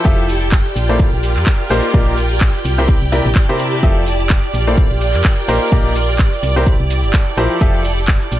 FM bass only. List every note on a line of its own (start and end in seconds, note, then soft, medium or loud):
0.05 0.62 F1 loud
0.76 1.09 A#1 loud
1.13 1.38 A#1 medium
1.36 1.45 F2 medium
1.70 1.81 A#1 medium
1.94 2.51 A#1 loud
2.65 2.98 C2 loud
3.02 3.21 C2 medium
3.25 3.34 A#1 loud
3.83 4.40 F1 loud
4.54 4.87 A#1 medium
4.91 5.16 A#1 medium
5.14 5.23 F2 medium
5.48 5.59 A#1 medium
5.72 6.29 A#1 loud
6.43 6.76 C2 medium
6.80 7.05 C2 medium
7.03 7.12 G1 medium
7.37 7.48 A#1 medium
7.61 8.18 F1 loud
8.32 8.40 A#1 medium